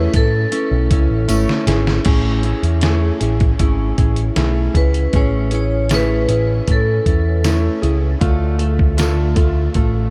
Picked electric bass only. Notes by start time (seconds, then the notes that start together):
0.14 A2
0.71 B1
0.91 C#2
1.10 A1
1.29 G#1
1.67 G#1
2.05 A1
2.63 E2
3.21 A1
3.60 G#1
3.98 A1
4.36 B1
4.74 C#2
5.13 A1
6.29 A1
6.68 A2
7.06 E2
7.83 C#2
8.21 D2
9.36 D2
9.75 A1